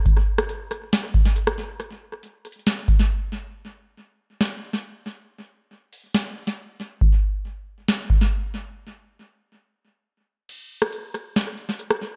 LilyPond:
\new DrumStaff \with { instrumentName = "Drums" } \drummode { \time 4/4 \tempo 4 = 138 <hh bd>8. ss16 hh8 hh8 <hh sn>8 <hh bd>8 hh16 ss8. | hh4 \tuplet 3/2 { hh16 r16 r16 hh16 hh16 hh16 } <hh sn>8 <hh bd>8 r4 | r4 r4 sn4 r4 | r4 r8 hho8 sn4 r4 |
bd4 r4 sn8 bd8 r4 | r4 r4 r4 r4 | <cymc hh>8. ss16 hh8 hh8 <hh sn>8 hh8 hh16 ss8. | }